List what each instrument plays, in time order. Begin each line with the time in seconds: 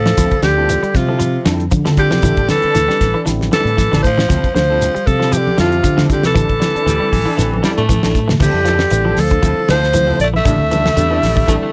Already playing: fingered electric bass A2, tenor saxophone F3, alto saxophone A4
0.06 clean electric guitar E3, snare, high conga
0.16 fingered electric bass D2, tine electric piano D3 G3 C4 F4, clean electric guitar F3 C4 E4 A4, kick, closed hi-hat, high conga, low conga, shekere
0.31 kick, closed hi-hat
0.42 fingered electric bass D2, clean electric guitar D3, tenor saxophone D3, alto saxophone G4, snare, closed hi-hat, high conga, shekere
0.56 tine electric piano D3 G3 C4 F4, clean electric guitar C4 E4 A4
0.69 clean electric guitar E3, closed hi-hat, shekere
0.83 clean electric guitar G3, muted fingered electric bass stroke, closed hi-hat
0.94 fingered electric bass C3, tenor saxophone C3, alto saxophone F4, kick, snare, closed hi-hat, high conga, shekere
1.06 tine electric piano D3 G3 C4 F4, clean electric guitar F3 C4 E4 A4
1.19 clean electric guitar F3, closed hi-hat, high conga, shekere
1.44 fingered electric bass F2, tine electric piano D3 G3 C4 D4, clean electric guitar D3 F3 C4 E4 A4, snare, closed hi-hat, high conga, shekere
1.60 closed hi-hat
1.71 fingered electric bass D3, clean electric guitar F3, kick, closed hi-hat, high conga, shekere
1.84 tine electric piano D3 G3 C4 F4, clean electric guitar D3 C4 E4 A4, snare, low conga
1.97 tenor saxophone D3, alto saxophone G4, kick, closed hi-hat, shekere
2.11 fingered electric bass C3, clean electric guitar E3, snare, high conga
2.22 fingered electric bass A1, clean electric guitar E3 G3 D4 E4 A4, kick, closed hi-hat, high conga, low conga, shekere
2.37 fingered electric bass A1, kick, closed hi-hat
2.48 clean electric guitar D3, tine electric piano D3 G3 C4 E4, tenor saxophone E3, alto saxophone A4, snare, closed hi-hat, high conga, shekere
2.62 clean electric guitar D4 E4 A4, muted fingered electric bass stroke, closed hi-hat
2.74 fingered electric bass D2, clean electric guitar E3, snare, closed hi-hat, shekere
2.88 tine electric piano D3 G3 C4 D4, clean electric guitar G3, muted fingered electric bass stroke, snare
3.01 fingered electric bass A1, kick, snare, closed hi-hat, shekere
3.14 clean electric guitar E3 D4 A4
3.25 fingered electric bass A1, tine electric piano D3 G3 C4 E4, clean electric guitar E3, snare, closed hi-hat, shekere
3.41 snare, high conga
3.52 clean electric guitar D3 G3 D4 E4 A4, tenor saxophone E3, alto saxophone A4, snare, closed hi-hat, high conga, shekere
3.65 fingered electric bass A2, closed hi-hat
3.77 clean electric guitar E3, kick, snare, closed hi-hat, high conga, shekere
3.92 fingered electric bass A1, clean electric guitar D3 D4 E4 A4, snare, low conga
4.03 fingered electric bass A2, tenor saxophone F3, alto saxophone C5, kick, closed hi-hat, shekere
4.18 clean electric guitar E3, snare, high conga
4.29 fingered electric bass D2, tine electric piano D3 G3 C4 F4, clean electric guitar F3 C4 E4 A4, kick, snare, closed hi-hat, high conga, low conga, shekere
4.44 kick, closed hi-hat
4.55 fingered electric bass D2, clean electric guitar D3, tenor saxophone F3, alto saxophone C5, snare, closed hi-hat, high conga, shekere
4.70 tine electric piano D3 G3 C4 F4, clean electric guitar C4 E4 A4
4.81 closed hi-hat, high conga, shekere
4.95 clean electric guitar G3, muted fingered electric bass stroke, closed hi-hat
5.07 fingered electric bass C3, tenor saxophone F3, alto saxophone A4, kick, closed hi-hat, high conga, shekere
5.20 tine electric piano D3 G3 C4 F4, clean electric guitar F3 C4 E4 A4, snare
5.32 clean electric guitar F3, alto saxophone G4, closed hi-hat, high conga, shekere
5.37 tenor saxophone D3
5.47 high conga
5.57 fingered electric bass F2, tenor saxophone C3, tine electric piano D3 G3 C4 F4, clean electric guitar D3 F3 C4 E4 A4, alto saxophone F4, snare, closed hi-hat, high conga, shekere
5.72 closed hi-hat
5.84 fingered electric bass D3, clean electric guitar F3, kick, closed hi-hat, high conga, shekere
5.97 clean electric guitar D3 C4 E4 A4, tine electric piano D3 G3 C4 F4, snare, low conga
6.10 tenor saxophone D3, alto saxophone G4, kick, closed hi-hat, shekere
6.23 fingered electric bass C3, tenor saxophone E3, alto saxophone A4, snare, high conga
6.35 fingered electric bass A1, clean electric guitar E3 G3 D4 E4 A4, kick, closed hi-hat, high conga, low conga, shekere
6.49 fingered electric bass A1, kick, closed hi-hat
6.59 tine electric piano D3 G3 C4 E4, clean electric guitar D3, snare, closed hi-hat, high conga, shekere
6.75 clean electric guitar D4 E4 A4, muted fingered electric bass stroke, closed hi-hat
6.86 fingered electric bass D2, clean electric guitar E3, baritone saxophone G3, closed hi-hat, high conga, shekere
7.00 tine electric piano D3 G3 C4 E4, clean electric guitar G3, muted fingered electric bass stroke
7.11 fingered electric bass A1, baritone saxophone E3, kick, open hi-hat, high conga, shekere
7.25 clean electric guitar E3 D4 E4 A4
7.37 fingered electric bass A1, tine electric piano D3 G3 C4 E4, clean electric guitar E3, snare, closed hi-hat, shekere
7.53 high conga
7.63 clean electric guitar D3 G3 D4 E4 A4, baritone saxophone G3, snare, closed hi-hat, high conga, shekere
7.78 fingered electric bass A2, baritone saxophone A3, closed hi-hat
7.89 clean electric guitar E3, kick, closed hi-hat, high conga, shekere
8.03 fingered electric bass A1, clean electric guitar D4 E4 A4, snare, high conga
8.15 fingered electric bass A2, kick, closed hi-hat, shekere
8.28 clean electric guitar E3, snare, low conga
8.40 fingered electric bass D2, tine electric piano D3 G3 C4 E4, tenor saxophone D3, clean electric guitar E3 F3 C4 E4 A4, alto saxophone G4, kick, crash, high conga, low conga, shekere
8.53 fingered electric bass F2
8.65 clean electric guitar F3 C4 E4 A4, snare, closed hi-hat, high conga, shekere
8.79 snare
8.90 fingered electric bass A1, tine electric piano D3 G3 C4 E4, clean electric guitar E3, closed hi-hat, shekere
8.94 high conga
9.05 clean electric guitar F3 C4 A4
9.17 fingered electric bass D2, alto saxophone A4, snare, open hi-hat, high conga, shekere
9.21 tenor saxophone F3
9.31 clean electric guitar D3, kick, closed hi-hat
9.42 fingered electric bass D2, tine electric piano D3 G3 C4 E4, clean electric guitar F3 C4 E4 A4, kick, closed hi-hat, shekere
9.68 fingered electric bass D2, clean electric guitar D3 F3 C4 E4 A4, tenor saxophone F3, alto saxophone C5, snare, closed hi-hat, high conga, shekere
9.83 snare
9.93 tine electric piano D3 G3 C4 E4, clean electric guitar E3, closed hi-hat, high conga, shekere
10.07 clean electric guitar F3 C4 E4 A4, low conga
10.20 fingered electric bass A#1, tenor saxophone A3, alto saxophone D5, closed hi-hat, shekere
10.34 clean electric guitar E3, tenor saxophone A3, alto saxophone E5, high conga
10.45 fingered electric bass A1, clean electric guitar D3 G3 D4 E4 A4, tine electric piano D3 G3 C4 E4, kick, closed hi-hat, high conga, low conga, shekere
10.58 fingered electric bass D2
10.71 clean electric guitar E3 G3 D4 E4 A4, closed hi-hat, high conga, shekere
10.86 snare, low conga
10.97 fingered electric bass E2, clean electric guitar D3, tine electric piano D3 G3 C4 D4, baritone saxophone G3, closed hi-hat, high conga, shekere
11.10 clean electric guitar E3 D4 E4 A4
11.23 fingered electric bass A1, snare, open hi-hat, high conga, shekere
11.36 clean electric guitar D3, kick
11.48 fingered electric bass A1, tine electric piano D3 G3 C4 E4, clean electric guitar E3 G3 D4 E4 A4, baritone saxophone A3, kick, closed hi-hat, shekere
11.62 baritone saxophone A3, muted fingered electric bass stroke